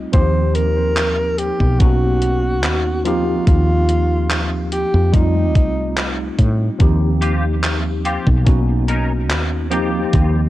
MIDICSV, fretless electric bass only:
0, 0, Header, 1, 2, 480
1, 0, Start_track
1, 0, Tempo, 833333
1, 78, Time_signature, 4, 2, 24, 8
1, 6042, End_track
2, 0, Start_track
2, 0, Title_t, "Fretless electric bass"
2, 0, Program_c, 0, 35
2, 79, Note_on_c, 0, 39, 93
2, 863, Note_off_c, 0, 39, 0
2, 922, Note_on_c, 0, 35, 94
2, 1523, Note_off_c, 0, 35, 0
2, 1523, Note_on_c, 0, 39, 82
2, 1945, Note_off_c, 0, 39, 0
2, 2000, Note_on_c, 0, 39, 90
2, 2784, Note_off_c, 0, 39, 0
2, 2845, Note_on_c, 0, 41, 98
2, 3199, Note_off_c, 0, 41, 0
2, 3199, Note_on_c, 0, 36, 94
2, 3623, Note_off_c, 0, 36, 0
2, 3679, Note_on_c, 0, 45, 79
2, 3849, Note_off_c, 0, 45, 0
2, 3918, Note_on_c, 0, 39, 94
2, 4703, Note_off_c, 0, 39, 0
2, 4763, Note_on_c, 0, 35, 95
2, 5361, Note_off_c, 0, 35, 0
2, 5361, Note_on_c, 0, 39, 83
2, 5784, Note_off_c, 0, 39, 0
2, 5840, Note_on_c, 0, 39, 90
2, 6042, Note_off_c, 0, 39, 0
2, 6042, End_track
0, 0, End_of_file